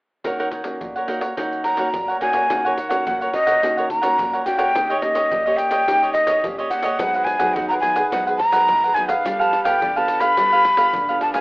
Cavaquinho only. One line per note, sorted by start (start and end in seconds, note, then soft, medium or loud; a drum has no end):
0.24 0.37 D#4 medium
0.24 0.38 A#4 medium
0.24 0.38 C#5 medium
0.24 0.38 F#5 medium
0.39 0.48 D#4 medium
0.39 0.48 A#4 medium
0.39 0.48 C#5 medium
0.39 0.48 F#5 medium
0.51 0.93 D#4 soft
0.51 0.94 F#5 soft
0.96 1.07 A#4 soft
0.96 1.08 C#5 soft
0.96 1.08 F#5 soft
1.07 1.21 D#4 medium
1.07 1.21 A#4 medium
1.07 1.21 C#5 medium
1.07 1.19 F#5 medium
1.21 1.36 A#4 soft
1.21 1.35 C#5 soft
1.21 1.35 F#5 soft
1.37 1.63 D#4 medium
1.37 1.64 A#4 medium
1.37 1.65 C#5 medium
1.37 1.65 F#5 medium
1.64 1.76 D#4 soft
1.64 1.77 A#4 soft
1.64 1.77 C#5 medium
1.64 1.78 F#5 soft
1.77 1.87 D#4 medium
1.77 1.88 A#4 medium
1.77 1.88 C#5 medium
1.77 1.88 F#5 medium
2.08 2.20 A#4 soft
2.08 2.20 C#5 soft
2.08 2.21 F#5 soft
2.20 2.34 D#4 medium
2.20 2.34 A#4 medium
2.20 2.34 C#5 medium
2.20 2.33 F#5 medium
2.34 2.49 A#4 soft
2.34 2.48 C#5 soft
2.34 2.48 F#5 soft
2.50 2.63 D#4 soft
2.50 2.63 A#4 soft
2.50 2.64 C#5 medium
2.50 2.63 F#5 soft
2.65 2.90 A#4 medium
2.65 2.89 C#5 medium
2.65 2.88 F#5 medium
2.89 3.05 A#4 medium
2.89 3.04 C#5 medium
2.89 3.04 F#5 medium
3.06 3.19 D#4 soft
3.06 3.19 A#4 medium
3.06 3.20 C#5 soft
3.06 3.20 F#5 medium
3.21 3.47 A#4 medium
3.21 3.47 C#5 medium
3.21 3.45 F#5 medium
3.47 3.61 A#4 soft
3.47 3.61 C#5 medium
3.47 3.60 F#5 medium
3.62 3.75 D#4 medium
3.62 3.76 A#4 soft
3.62 3.76 C#5 medium
3.62 3.76 F#5 medium
3.77 3.88 A#4 medium
3.77 3.89 C#5 medium
3.77 3.89 F#5 medium
3.90 muted cavaquinho stroke soft
4.02 4.31 A#4 medium
4.02 4.31 C#5 medium
4.02 4.30 F#5 medium
4.33 4.45 A#4 soft
4.33 4.46 C#5 medium
4.33 4.46 F#5 medium
4.45 4.59 D#4 soft
4.45 4.59 A#4 soft
4.45 4.58 C#5 soft
4.45 4.56 F#5 soft
4.58 4.73 A#4 medium
4.58 4.73 C#5 medium
4.58 4.72 F#5 medium
4.75 4.88 D#4 soft
4.75 4.88 G4 soft
4.75 4.89 C#5 soft
4.75 4.88 D#5 medium
4.90 5.15 G4 medium
4.90 5.14 C#5 medium
4.90 5.13 D#5 medium
5.15 5.30 G4 medium
5.15 5.29 C#5 medium
5.15 5.29 D#5 medium
5.31 5.44 D#4 soft
5.31 5.44 G4 medium
5.31 5.45 C#5 soft
5.31 5.45 D#5 medium
5.46 5.72 G4 medium
5.46 5.71 C#5 medium
5.46 5.70 D#5 medium
5.71 5.86 G4 medium
5.71 5.86 C#5 medium
5.71 5.85 D#5 medium
5.87 6.00 D#4 medium
5.87 6.01 G4 medium
5.87 6.01 C#5 medium
5.87 6.01 D#5 medium
6.02 6.14 G4 medium
6.02 6.14 C#5 medium
6.02 6.14 D#5 medium
6.15 muted cavaquinho stroke soft
6.26 6.56 G4 medium
6.26 6.56 C#5 medium
6.26 6.55 D#5 medium
6.58 6.70 G4 soft
6.58 6.71 C#5 medium
6.58 6.71 D#5 medium
6.71 6.84 D#4 soft
6.71 6.84 G4 soft
6.71 6.84 C#5 medium
6.71 6.82 D#5 soft
6.83 6.99 G4 medium
6.83 6.98 C#5 medium
6.83 6.98 D#5 medium
7.00 7.13 D#4 soft
7.00 7.13 G#4 soft
7.00 7.14 B4 medium
7.00 7.14 F#5 medium
7.15 7.41 G#4 medium
7.15 7.40 B4 medium
7.15 7.38 F#5 medium
7.39 7.55 G#4 medium
7.39 7.54 B4 medium
7.39 7.54 F#5 medium
7.56 7.69 D#4 soft
7.56 7.69 G#4 soft
7.56 7.70 B4 soft
7.56 7.70 F#5 medium
7.71 7.97 G#4 medium
7.71 7.96 B4 medium
7.71 7.94 F#5 medium
7.96 8.11 G#4 medium
7.96 8.11 B4 medium
7.96 8.10 F#5 medium
8.12 8.25 D#4 soft
8.12 8.26 G#4 medium
8.12 8.26 B4 medium
8.12 8.26 F#5 medium
8.27 8.39 G#4 medium
8.27 8.39 B4 medium
8.27 8.39 F#5 medium
8.39 muted cavaquinho stroke soft
8.52 8.82 G#4 medium
8.52 8.81 B4 medium
8.52 8.81 F#5 medium
8.84 8.95 G#4 soft
8.84 8.95 B4 medium
8.84 8.96 F#5 medium
8.95 9.09 D#4 soft
8.95 9.09 G#4 soft
8.95 9.08 B4 soft
8.95 9.07 F#5 soft
9.08 9.24 G#4 medium
9.08 9.23 B4 medium
9.08 9.23 F#5 medium
9.24 9.38 D4 soft
9.24 9.38 G4 soft
9.24 9.39 B4 soft
9.24 9.38 F5 medium
9.39 9.65 G4 medium
9.39 9.65 B4 medium
9.39 9.63 F5 medium
9.65 9.80 G4 medium
9.65 9.80 B4 medium
9.65 9.79 F5 medium
9.81 9.94 D4 soft
9.81 9.95 G4 soft
9.81 9.95 B4 soft
9.81 9.95 F5 soft
9.96 10.22 G4 medium
9.96 10.22 B4 medium
9.96 10.20 F5 medium
10.21 10.37 G4 soft
10.21 10.36 B4 medium
10.21 10.36 F5 medium
10.38 10.51 D4 soft
10.38 10.51 G4 medium
10.38 10.51 B4 medium
10.38 10.51 F5 medium
10.52 10.64 G4 medium
10.52 10.64 B4 medium
10.52 10.65 F5 medium
10.65 muted cavaquinho stroke soft
10.78 11.07 G4 medium
10.78 11.07 B4 medium
10.78 11.06 F5 medium
11.09 11.21 G4 soft
11.09 11.22 B4 medium
11.09 11.22 F5 medium
11.21 11.35 D4 soft
11.21 11.35 G4 soft
11.21 11.34 B4 soft
11.21 11.33 F5 soft
11.34 11.41 G4 medium
11.34 11.41 B4 medium
11.34 11.41 F5 medium